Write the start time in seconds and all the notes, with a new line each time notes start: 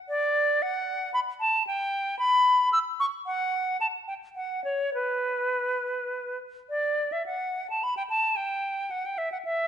0.09 D5
0.62 F#5
1.14 B5
1.40 A5
1.67 G5
2.19 B5
2.73 E6
3.00 C#6
3.26 F#5
3.81 A5
4.08 G5
4.36 F#5
4.64 C#5
4.94 B4
6.70 D5
7.12 E5
7.26 F#5
7.70 A5
7.83 B5
7.97 G5
8.10 A5
8.36 G5
8.91 F#5
9.06 G5
9.18 E5
9.32 F#5
9.45 E5